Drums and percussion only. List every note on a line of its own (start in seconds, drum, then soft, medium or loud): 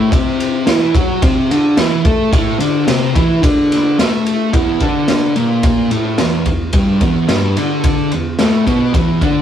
0.12 kick loud
0.12 ride loud
0.40 ride medium
0.67 snare loud
0.67 ride loud
0.95 kick loud
0.95 ride medium
1.22 kick loud
1.22 ride medium
1.51 ride medium
1.77 snare loud
1.77 ride loud
2.05 kick loud
2.05 ride medium
2.33 kick loud
2.33 ride loud
2.60 ride medium
2.88 snare loud
2.88 ride loud
3.16 kick loud
3.16 ride medium
3.43 kick loud
3.43 ride loud
3.72 snare soft
3.72 ride medium
3.99 snare loud
3.99 ride loud
4.26 ride medium
4.54 kick loud
4.54 ride medium
4.80 kick medium
4.80 ride medium
5.08 snare loud
5.08 ride medium
5.36 ride medium
5.63 kick loud
5.63 ride medium
5.91 ride medium
6.18 snare loud
6.18 ride medium
6.46 kick medium
6.46 ride medium
6.73 kick loud
6.73 ride loud
7.01 kick medium
7.01 ride medium
7.29 snare loud
7.29 ride loud
7.57 ride medium
7.84 kick loud
7.84 ride medium
8.12 ride medium
8.39 snare loud
8.39 ride medium
8.67 kick medium
8.67 ride medium
8.94 kick loud
8.94 ride medium
9.21 kick medium
9.21 ride medium